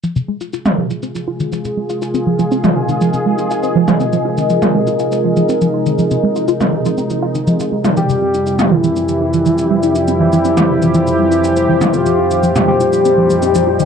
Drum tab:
SH |xx-xxx-xxx-xxx-x|xx-xxx-xxx-xxx-x|xx-xxx-xxx-xxx-x|xx-xxx-xxx-xxx-x|
T2 |-----o----------|-----o---------o|-----o----------|-----o---------o|

SH |xx-xxx-xxx-xxx-x|xx-xxx-xxx-xxx-x|xx-xxx-xxx-xxx-x|
T2 |-----o----------|-----o---------o|-----o----------|